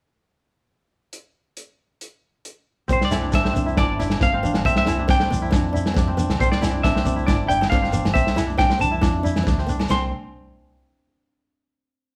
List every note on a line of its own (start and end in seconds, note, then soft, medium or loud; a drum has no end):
1.13 closed hi-hat soft
1.57 closed hi-hat soft
2.01 closed hi-hat soft
2.45 closed hi-hat soft
2.88 3.51 C2 medium
2.88 3.43 C4 medium
2.88 3.03 C4 medium
2.88 kick medium
2.88 shekere medium
2.93 3.03 C5 medium
3.01 3.33 D5 medium
3.01 snare medium
3.11 3.66 E4 medium
3.11 3.25 E4 medium
3.11 snare medium
3.11 low agogo medium
3.11 shekere medium
3.22 3.31 D4 medium
3.22 high conga medium
3.32 3.47 C4 medium
3.32 3.53 D4 medium
3.32 3.78 E5 medium
3.32 kick medium
3.32 snare medium
3.32 low agogo medium
3.32 shekere medium
3.44 4.33 C4 medium
3.44 snare medium
3.44 high conga medium
3.53 3.76 C2 medium
3.53 3.69 C4 medium
3.53 3.77 D4 medium
3.53 low conga medium
3.53 shekere medium
3.66 3.99 E4 medium
3.66 shekere soft
3.77 4.17 G1 medium
3.77 4.44 D4 medium
3.77 3.91 E4 medium
3.77 4.22 D5 medium
3.77 kick medium
3.77 snare medium
3.77 low agogo medium
3.77 shekere medium
3.99 4.13 D4 medium
3.99 4.87 E4 medium
3.99 snare soft
3.99 shekere medium
4.10 snare medium
4.10 low agogo medium
4.21 4.51 G1 medium
4.21 4.35 C4 medium
4.21 4.63 F5 medium
4.21 kick medium
4.21 snare medium
4.21 shekere medium
4.32 4.65 C4 medium
4.32 high conga medium
4.43 4.56 B3 medium
4.43 4.99 D4 medium
4.43 low conga medium
4.43 shekere medium
4.54 4.64 G1 medium
4.54 snare medium
4.54 high conga medium
4.54 low agogo medium
4.54 shekere soft
4.65 5.27 C2 medium
4.65 4.78 C4 medium
4.65 5.20 C4 medium
4.65 4.76 E5 medium
4.65 kick medium
4.65 shekere medium
4.76 5.07 E5 medium
4.76 snare medium
4.86 5.00 E4 medium
4.86 5.42 E4 medium
4.86 snare medium
4.86 low agogo medium
4.86 shekere medium
4.99 5.09 D4 medium
4.99 high conga medium
5.08 5.21 C4 medium
5.08 5.30 D4 medium
5.08 6.15 G5 medium
5.08 kick medium
5.08 snare medium
5.08 low agogo medium
5.08 shekere medium
5.20 6.07 C4 medium
5.20 snare medium
5.20 high conga medium
5.30 5.52 C2 medium
5.30 5.44 C4 medium
5.30 5.52 D4 medium
5.30 low conga medium
5.30 shekere loud
5.42 5.74 E4 medium
5.42 shekere soft
5.51 5.93 F2 medium
5.51 5.96 D4 medium
5.51 5.64 E4 medium
5.51 kick medium
5.51 snare medium
5.51 low agogo medium
5.51 shekere medium
5.73 5.86 D4 medium
5.73 6.61 E4 medium
5.73 shekere medium
5.86 snare medium
5.86 low agogo medium
5.86 shekere soft
5.94 6.27 F2 medium
5.94 6.08 C4 medium
5.94 6.17 D4 medium
5.94 kick medium
5.94 snare medium
5.94 shekere medium
6.07 6.39 C4 medium
6.07 high conga medium
6.17 6.31 B3 medium
6.17 6.72 D4 medium
6.17 low conga medium
6.17 shekere medium
6.30 6.39 C#2 medium
6.30 snare medium
6.30 high conga medium
6.30 low agogo medium
6.30 shekere soft
6.40 7.02 C2 medium
6.40 6.94 C4 medium
6.40 6.54 C4 medium
6.40 6.51 C5 medium
6.40 kick medium
6.40 shekere medium
6.52 6.85 D5 medium
6.52 snare medium
6.61 7.16 E4 medium
6.61 6.75 E4 medium
6.61 snare medium
6.61 low agogo medium
6.61 shekere loud
6.72 6.83 D4 medium
6.72 high conga medium
6.83 6.98 C4 medium
6.83 7.04 D4 medium
6.83 7.29 E5 medium
6.83 kick medium
6.83 snare medium
6.83 low agogo medium
6.83 shekere medium
6.95 7.82 C4 medium
6.95 snare medium
6.95 high conga medium
7.05 7.26 C2 medium
7.05 7.19 C4 medium
7.05 7.26 D4 medium
7.05 low conga medium
7.05 shekere loud
7.16 7.47 E4 medium
7.16 shekere soft
7.26 7.68 G1 medium
7.26 7.69 D4 medium
7.26 7.41 E4 medium
7.26 7.50 D5 medium
7.26 kick medium
7.26 snare medium
7.26 low agogo medium
7.26 shekere medium
7.47 7.63 D4 medium
7.47 8.36 E4 medium
7.47 7.69 G5 medium
7.47 shekere medium
7.61 snare medium
7.61 low agogo medium
7.61 shekere soft
7.70 8.03 G1 medium
7.70 7.85 C4 medium
7.70 7.92 D4 medium
7.70 8.11 F5 medium
7.70 kick medium
7.70 snare medium
7.70 shekere medium
7.82 8.13 C4 medium
7.82 snare soft
7.82 high conga medium
7.92 8.06 B3 medium
7.92 8.46 D4 medium
7.92 low conga medium
7.92 shekere medium
8.05 8.15 G1 medium
8.05 snare medium
8.05 high conga medium
8.05 low agogo medium
8.05 shekere soft
8.13 8.78 C2 medium
8.13 8.35 C4 medium
8.13 8.28 C4 medium
8.13 8.58 E5 medium
8.13 kick medium
8.13 snare soft
8.13 shekere medium
8.27 snare medium
8.36 8.50 E4 medium
8.36 8.48 E4 medium
8.36 snare medium
8.36 low agogo medium
8.36 shekere medium
8.47 8.57 D4 medium
8.47 high conga medium
8.47 shekere soft
8.58 8.71 C4 medium
8.58 8.70 D4 medium
8.58 8.79 G5 medium
8.58 kick medium
8.58 snare medium
8.58 low agogo medium
8.58 shekere medium
8.70 8.80 C4 medium
8.70 snare medium
8.70 high conga medium
8.79 9.02 C2 medium
8.79 8.93 C4 medium
8.79 8.91 D4 medium
8.79 9.65 A5 medium
8.79 low conga medium
8.79 shekere medium
8.91 9.02 E4 medium
8.91 shekere soft
9.01 9.43 F2 medium
9.01 9.23 D4 medium
9.01 9.15 E4 medium
9.01 kick medium
9.01 snare medium
9.01 high conga medium
9.01 low agogo medium
9.01 shekere medium
9.23 9.37 D4 medium
9.23 9.46 E4 medium
9.23 shekere medium
9.36 snare medium
9.36 low conga medium
9.36 low agogo medium
9.36 shekere soft
9.44 9.67 D2 medium
9.44 9.58 C4 medium
9.44 9.58 D4 medium
9.44 kick medium
9.44 snare medium
9.44 shekere medium
9.58 9.69 C4 medium
9.58 snare soft
9.58 high conga medium
9.66 9.89 C2 medium
9.66 9.81 B3 medium
9.66 9.90 D4 medium
9.66 low conga medium
9.66 shekere medium
9.79 snare medium
9.79 high conga medium
9.79 low agogo medium
9.79 shekere soft
9.88 10.11 C2 medium
9.88 10.03 C4 medium
9.88 10.11 C4 medium
9.88 10.11 C6 medium
9.88 snare medium
9.88 high conga medium
9.88 low agogo medium
9.88 shekere medium